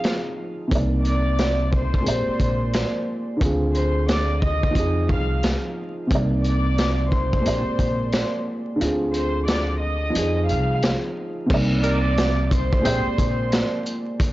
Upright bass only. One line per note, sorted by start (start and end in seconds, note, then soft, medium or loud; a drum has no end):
0.72 2.02 C2 loud
2.07 2.23 A#1 loud
2.28 muted upright bass stroke soft
2.40 2.83 A#1 medium
3.41 4.72 D2 loud
4.75 5.11 F2 loud
5.10 5.52 C2 medium
6.11 7.42 C2 loud
7.46 7.62 A#1 loud
7.67 muted upright bass stroke soft
7.79 8.22 A#1 medium
8.81 10.11 D2 loud
10.16 10.51 F2 loud
10.49 10.92 C2 medium
11.50 12.81 C2 loud
12.85 13.02 A#1 loud
13.07 muted upright bass stroke soft
13.19 13.61 A#1 medium